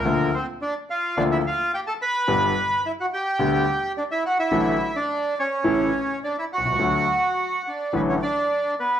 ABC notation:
X:1
M:4/4
L:1/16
Q:1/4=107
K:D
V:1 name="Bandoneon"
[_B,_B]2 [=C=c]2 [Dd]2 [=F=f]2 [Dd] [Ee] [Ff]2 [Gg] [Aa] [=Bb]2- | [Bb]4 [Ee] [Ff] [Gg]6 [Dd] [Ee] [Ff] [Ee]- | [Ee]3 [Dd]3 [Cc]6 [Dd] [Ee] [Ff]2- | [Ff]6 [Dd]2 [B,B] [Cc] [Dd]4 [B,B]2 |]
V:2 name="Grand piano" clef=bass
[D,,D,=F,_B,=F]2 z6 [D,,D,F,B,F]2 z6 | [G,,,G,,D,G,B,G]2 z6 [D,,D,G,B,G]2 z6 | [A,,,A,,D,F,A,F]2 z6 [A,,,A,,C,E,A,E]2 z4 z/2 B,,,/2 =C,,/2 ^C,,/2 | [D,,D,F,A,F]2 z6 [A,,,A,,D,F,A,F]2 z6 |]